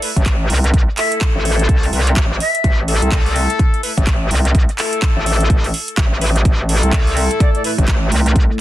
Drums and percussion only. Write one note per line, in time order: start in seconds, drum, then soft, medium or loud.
0.02 open hi-hat loud
0.16 kick medium
0.16 closed hi-hat medium
0.26 kick loud
0.26 clap loud
0.26 closed hi-hat medium
0.50 open hi-hat loud
0.64 closed hi-hat medium
0.74 kick loud
0.74 closed hi-hat medium
0.97 clap medium
0.97 open hi-hat loud
1.12 closed hi-hat medium
1.21 kick loud
1.21 clap loud
1.21 closed hi-hat medium
1.45 open hi-hat loud
1.59 closed hi-hat medium
1.69 kick loud
1.69 closed hi-hat medium
1.83 open hi-hat medium
1.93 open hi-hat loud
2.07 closed hi-hat medium
2.17 kick loud
2.17 clap loud
2.17 closed hi-hat medium
2.40 open hi-hat loud
2.55 closed hi-hat medium
2.64 kick loud
2.64 closed hi-hat medium
2.88 open hi-hat loud
3.02 closed hi-hat medium
3.12 kick loud
3.12 clap loud
3.12 closed hi-hat medium
3.26 open hi-hat medium
3.36 open hi-hat loud
3.50 closed hi-hat medium
3.59 kick loud
3.59 closed hi-hat medium
3.74 closed hi-hat soft
3.83 open hi-hat loud
3.97 kick medium
3.97 closed hi-hat medium
4.07 kick loud
4.07 clap loud
4.07 closed hi-hat medium
4.31 open hi-hat loud
4.45 closed hi-hat medium
4.55 kick loud
4.55 closed hi-hat medium
4.69 closed hi-hat soft
4.79 clap medium
4.79 open hi-hat loud
4.93 closed hi-hat medium
5.02 kick loud
5.02 clap loud
5.02 closed hi-hat medium
5.26 open hi-hat loud
5.40 closed hi-hat soft
5.50 kick loud
5.50 closed hi-hat medium
5.64 open hi-hat medium
5.74 open hi-hat loud
5.88 closed hi-hat medium
5.98 kick loud
5.98 clap loud
5.98 closed hi-hat medium
6.21 open hi-hat loud
6.36 closed hi-hat medium
6.45 kick loud
6.45 closed hi-hat medium
6.69 open hi-hat loud
6.83 closed hi-hat medium
6.93 kick loud
6.93 clap loud
6.93 closed hi-hat medium
7.07 open hi-hat medium
7.17 open hi-hat loud
7.31 closed hi-hat soft
7.40 kick loud
7.40 closed hi-hat medium
7.55 closed hi-hat soft
7.64 open hi-hat loud
7.78 kick medium
7.78 closed hi-hat soft
7.88 kick loud
7.88 clap loud
7.88 closed hi-hat medium
8.12 open hi-hat loud
8.26 closed hi-hat medium
8.36 kick loud
8.36 closed hi-hat medium